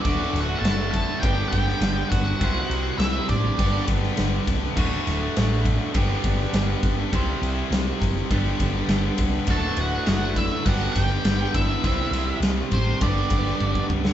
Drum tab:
CC |----------------|----------------|x---------------|----------------|
RD |x-x-x-x-x-x-x-x-|x-x-x-x-x-x-x-x-|--x-x-x-x-x-x-x-|x-x-x-x-x-x-x-x-|
SD |--o-o------oo---|----o------oo---|--o-o------oo---|----o-------o---|
BD |o-----o-o-o---o-|o-----o-o-o---o-|o-----o-o-o---o-|o-----o-o-o---o-|

CC |----------------|----------------|
RD |x-x-x-x-x-x-x-x-|x-x-x-x-x-x-----|
SD |----o-------o---|--o-o------o---o|
BD |o-----o-o-o---o-|o-----o-o-o-ooo-|